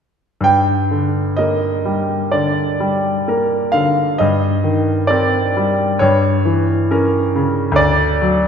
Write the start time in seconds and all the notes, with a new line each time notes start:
0.41 G2 G5
0.91 D3
1.36 A#3 A#4 D#5
1.85 G3
2.32 D3 D5
2.80 G3
3.28 A#3 A#4
3.72 D3 F5
4.18 G2 D#5
4.64 D#3
5.07 C4 A#4 D5
5.57 G3
5.99 G2 C#5
6.45 E3
6.91 C#4 A#4
7.36 C#3
7.72 D2
7.76 D5
8.22 F#3